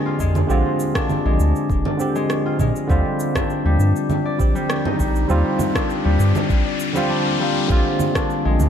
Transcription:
0.00 0.47 D3 loud
0.00 0.19 G#3 loud
0.00 1.01 A#3 loud
0.00 0.50 C4 medium
0.00 0.95 D4 medium
0.00 0.51 F4 loud
0.00 0.49 G4 loud
0.00 1.30 D5 medium
0.06 2.45 F4 medium
0.20 0.45 F2 medium
0.20 0.48 G#3 loud
0.20 kick medium
0.20 cabasa medium
0.35 low conga medium
0.35 cabasa soft
0.47 0.63 A#1 loud
0.47 1.95 D3 loud
0.47 1.24 G#3 medium
0.47 1.96 C4 medium
0.47 1.97 F4 loud
0.47 1.96 G4 medium
0.47 cabasa soft
0.80 cabasa medium
0.95 3.35 D4 loud
0.95 kick medium
0.95 cross-stick medium
0.95 cabasa soft
1.09 low conga medium
1.09 cabasa soft
1.25 1.37 A#1 medium
1.25 2.14 G#3 medium
1.40 1.53 D2 loud
1.40 cabasa medium
1.56 cabasa soft
1.70 1.83 F1 medium
1.70 kick loud
1.70 cabasa soft
1.85 3.70 D5 medium
1.85 low conga medium
1.97 2.85 D3 medium
1.97 2.86 C4 medium
1.97 2.87 G4 medium
1.97 cabasa medium
2.15 2.58 G#3 loud
2.15 cabasa soft
2.30 cross-stick medium
2.30 cabasa soft
2.46 4.98 F4 medium
2.59 2.73 A#2 medium
2.59 2.95 G#3 medium
2.59 kick medium
2.59 low conga medium
2.59 cabasa medium
2.76 cabasa soft
2.87 3.03 D#2 loud
2.87 4.35 D3 loud
2.87 4.36 G3 medium
2.87 3.64 G3 medium
2.87 4.36 C4 loud
2.87 4.37 F4 loud
2.87 kick loud
2.87 riser medium
2.87 cabasa soft
3.20 cabasa medium
3.35 4.91 D4 loud
3.35 kick medium
3.35 cross-stick medium
3.35 low conga medium
3.35 cabasa soft
3.50 cabasa soft
3.65 3.77 D#2 medium
3.65 4.54 G3 medium
3.79 3.93 G2 loud
3.79 cabasa medium
3.96 cabasa soft
4.10 low conga medium
4.10 cabasa soft
4.25 4.91 D5 medium
4.38 4.53 A#1 medium
4.38 5.26 G3 medium
4.38 5.26 C4 medium
4.38 5.27 G4 medium
4.38 kick loud
4.38 cabasa medium
4.55 4.98 G3 loud
4.55 cabasa soft
4.70 cross-stick medium
4.70 cabasa soft
4.85 5.81 D#4 medium
4.85 low conga medium
4.99 5.25 A#1 medium
4.99 5.28 G3 loud
4.99 kick medium
4.99 cabasa medium
5.16 cabasa soft
5.28 5.43 D#2 loud
5.28 6.76 G3 medium
5.28 6.04 G3 medium
5.28 6.76 C4 medium
5.28 6.77 F4 loud
5.28 cabasa soft
5.59 low conga medium
5.59 cabasa medium
5.75 7.09 D4 loud
5.75 kick loud
5.75 cross-stick medium
5.75 cabasa soft
5.90 cabasa soft
6.05 6.18 D#2 medium
6.05 6.94 G3 loud
6.20 6.33 G2 loud
6.20 cabasa medium
6.35 low conga medium
6.35 cabasa soft
6.49 6.63 A#1 medium
6.49 kick loud
6.49 cabasa soft
6.66 8.50 D5 medium
6.80 cabasa medium
6.93 7.08 D3 medium
6.93 7.09 G3 medium
6.93 7.38 G3 loud
6.93 7.10 C4 medium
6.93 cabasa soft
6.97 7.10 F4 loud
7.09 8.15 D4 medium
7.25 8.69 A#3 medium
7.39 7.75 G3 medium
7.67 7.83 A#1 loud
7.67 8.69 D3 medium
7.67 8.44 G#3 medium
7.67 8.69 C4 medium
7.67 8.69 G4 medium
7.67 kick loud
7.67 cabasa soft
7.71 8.69 F4 loud
8.00 low conga medium
8.00 cabasa medium
8.15 8.69 D4 loud
8.15 kick loud
8.15 cross-stick medium
8.15 cabasa soft
8.30 cabasa soft
8.45 8.58 A#1 medium
8.45 8.69 G#3 medium
8.60 8.69 D2 loud
8.60 low conga medium
8.60 cabasa medium

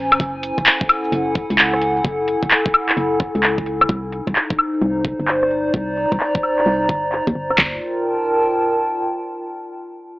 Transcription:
0.00 0.13 A#1 medium
0.00 1.19 C#4 medium
0.00 0.20 C5 medium
0.00 3.89 G#5 medium
0.00 0.20 A#5 medium
0.12 0.18 G#1 medium
0.12 cross-stick medium
0.12 closed hi-hat soft
0.12 cabasa soft
0.12 high woodblock medium
0.20 0.52 F#1 medium
0.20 3.89 E4 medium
0.20 kick loud
0.20 closed hi-hat medium
0.20 cabasa soft
0.36 3.89 A4 medium
0.43 closed hi-hat loud
0.43 cabasa medium
0.58 0.64 F#1 medium
0.58 kick medium
0.58 cross-stick soft
0.58 cabasa soft
0.63 3.89 F#5 medium
0.63 clap loud
0.63 closed hi-hat medium
0.63 cabasa soft
0.81 kick loud
0.89 closed hi-hat loud
0.89 cabasa medium
0.89 high woodblock medium
1.04 cabasa soft
1.12 1.44 F#1 loud
1.12 closed hi-hat medium
1.12 cabasa soft
1.35 kick loud
1.35 closed hi-hat loud
1.35 cabasa medium
1.50 2.01 C#2 medium
1.50 closed hi-hat medium
1.50 cabasa soft
1.58 clap loud
1.58 closed hi-hat medium
1.58 cabasa soft
1.74 cross-stick medium
1.82 closed hi-hat loud
1.82 cabasa medium
1.97 cabasa soft
2.05 2.37 F#1 medium
2.05 kick loud
2.05 closed hi-hat medium
2.28 closed hi-hat loud
2.28 cabasa medium
2.43 2.49 F#1 medium
2.43 kick medium
2.51 clap loud
2.51 closed hi-hat medium
2.51 cabasa soft
2.66 kick medium
2.74 closed hi-hat loud
2.74 cabasa medium
2.74 high woodblock medium
2.89 clap medium
2.89 cabasa soft
2.97 3.29 F#1 loud
2.97 closed hi-hat medium
2.97 cabasa soft
3.20 kick loud
3.20 cross-stick soft
3.20 closed hi-hat loud
3.35 3.86 C#2 medium
3.35 closed hi-hat medium
3.35 cabasa soft
3.43 clap loud
3.43 closed hi-hat medium
3.43 cabasa soft
3.58 kick medium
3.66 closed hi-hat loud
3.66 cabasa medium
3.81 cross-stick medium
3.81 cabasa soft
3.81 high woodblock medium
3.89 4.21 C2 loud
3.89 7.59 D#4 medium
3.89 kick loud
3.89 closed hi-hat medium
4.12 closed hi-hat loud
4.12 cabasa medium
4.27 4.33 C2 medium
4.27 kick medium
4.27 cross-stick soft
4.34 7.59 C5 medium
4.34 clap loud
4.34 closed hi-hat medium
4.34 cabasa soft
4.50 kick loud
4.59 closed hi-hat loud
4.59 cabasa medium
4.59 high woodblock medium
4.74 cabasa soft
4.82 5.14 C2 loud
4.82 closed hi-hat medium
4.82 cabasa soft
4.99 7.58 D5 medium
5.05 kick loud
5.05 closed hi-hat loud
5.05 cabasa medium
5.20 5.71 G1 medium
5.20 7.59 A#5 medium
5.20 closed hi-hat medium
5.20 cabasa soft
5.28 clap loud
5.28 closed hi-hat medium
5.43 cross-stick medium
5.51 closed hi-hat loud
5.51 cabasa medium
5.66 cabasa soft
5.74 6.06 C2 medium
5.74 kick loud
5.74 closed hi-hat medium
5.97 closed hi-hat loud
5.97 cabasa medium
6.12 6.18 C2 medium
6.12 kick medium
6.12 cross-stick soft
6.20 clap loud
6.20 closed hi-hat medium
6.35 kick loud
6.43 closed hi-hat loud
6.43 cabasa medium
6.43 high woodblock medium
6.58 clap medium
6.66 6.89 C2 loud
6.66 closed hi-hat medium
6.66 cabasa soft
6.89 7.21 G1 medium
6.89 kick loud
6.89 cross-stick soft
6.89 closed hi-hat loud
7.04 closed hi-hat medium
7.12 clap loud
7.12 closed hi-hat medium
7.27 7.33 D#2 loud
7.27 kick medium
7.35 7.54 G1 medium
7.35 closed hi-hat loud
7.50 cross-stick medium
7.50 closed hi-hat soft
7.50 cabasa soft
7.50 high woodblock medium
7.58 7.80 G1 medium
7.58 9.39 F4 medium
7.58 kick loud
7.58 clap medium
7.58 floor tom loud
7.68 9.39 A#4 medium
7.75 9.39 G5 medium
7.80 9.39 A5 medium

